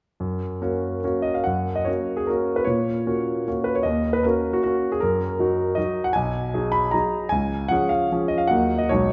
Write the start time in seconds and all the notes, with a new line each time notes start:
0.20 F#2
0.62 A#3 C#4 F#4
1.03 A#3 C#4 F#4
1.22 D#5
1.34 F5
1.44 F#2 F#5
1.76 D#5
1.85 A#3 C#4 F#4 C#5
2.16 G#4
2.27 A#3 C#4 F#4 A#4
2.56 B4
2.65 A#2 C#5
3.07 A#3 C#4 F#4
3.48 A#3 C#4 F#4
3.64 B4
3.75 C#5
3.83 D#2 D#5
4.13 B4
4.23 A#3 C#4 F#4 A#4
4.53 F#4
4.63 A#3 C#4 F#4
4.92 G#4
5.00 F#2 A#4
5.39 F#3 D#4 F#4
5.75 F#3 D#4 F#4 D#5
6.04 F#5
6.13 B1 G#5
6.54 F#3 D#4 G#4
6.72 B5
6.91 F#3 D#4 G#4 A#5
7.29 C#2 G#5
7.68 F3 C#4 G#4 F#5
7.89 F5
8.12 F3 C#4 G#4
8.28 D#5
8.38 F5
8.48 D#2 F#3 A#3 D#4 F#5
8.78 D#5
8.89 B1 F#3 G#3 D#4 C#5